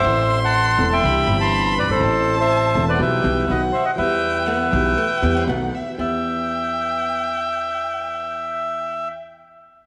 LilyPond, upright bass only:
\new Staff \with { instrumentName = "Upright bass" } { \clef bass \time 4/4 \key e \minor \tempo 4 = 122 a,,4~ a,,16. r32 e,,16. r32 c,16. r32 g,,4~ g,,32 fis,,32 g,,32 gis,,32 | a,,4~ a,,16. r32 e,,16. r32 b,,16. r32 b,,16. r32 b,,16. r8 r32 | e,4~ e,16. r32 b,,16. r8 r32 e,16. r32 b,,16. r8 r32 | e,8 r2. r8 |
r1 | }